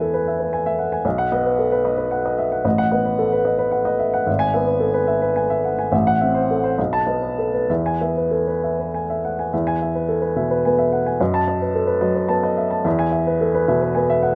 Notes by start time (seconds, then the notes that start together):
Already playing: E2 B3 B4 E5 G#5
0.01 A4
0.14 B4
0.28 E5
0.40 B4
0.53 G#5
0.66 E5
0.79 F#5
0.92 G#5
1.05 B1 D#5
1.18 F#5
1.32 B3 D#5
1.46 B4
1.59 A4
1.72 B4
1.85 D#5
1.98 B4
2.11 F#5
2.26 D#5
2.39 E5
2.52 F#5
2.65 A1 D#5
2.78 F#5
2.92 B3 D#5
3.05 B4
3.19 A4
3.32 B4
3.45 D#5
3.59 B4
3.72 F#5
3.85 D#5
3.99 E5
4.14 F#5
4.26 G#1 E5
4.39 G#5
4.54 B3 E5
4.67 B4
4.80 A4
4.94 B4
5.07 E5
5.22 B4
5.36 G#5
5.50 E5
5.65 F#5
5.79 G#5
5.92 A1 E5
6.07 F#5
6.21 C4 E5
6.34 C5
6.51 A4
6.64 C5
6.78 B1 D#5
6.93 A5
7.07 B3 D#5
7.22 B4
7.38 A4
7.54 B4
7.70 E2 E5
7.86 G#5
8.01 B3 E5
8.17 B4
8.31 A4
8.47 B4
8.64 E5
8.80 B4
8.94 G#5
9.10 E5
9.25 F#5
9.39 G#5
9.53 E2 E5
9.67 G#5
9.82 E5
9.95 B4
10.09 A4
10.22 B4
10.36 B2 E5
10.51 B4
10.65 B3 G#5
10.78 E5
10.92 F#5
11.06 G#5
11.20 F#2 D#5
11.34 A5
11.48 D#5
11.62 B4
11.75 A4
11.87 B4
12.01 F#3 D#5
12.15 B4
12.29 B3 A5
12.43 D#5
12.58 E5
12.70 A5
12.84 E2 E5
12.99 G#5
13.12 E5
13.27 B4
13.41 A4
13.54 B4
13.68 B2 E5
13.82 B4
13.95 B3 G#5
14.10 E5
14.23 F#5